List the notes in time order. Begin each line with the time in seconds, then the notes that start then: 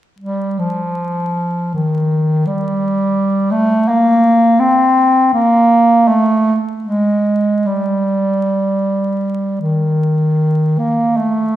0.19 G3
0.59 F3
1.74 D#3
2.47 G3
3.51 A3
3.89 A#3
4.60 C4
5.33 A#3
6.08 A3
6.84 G#3
7.66 G3
9.61 D#3
10.79 A#3
11.17 A3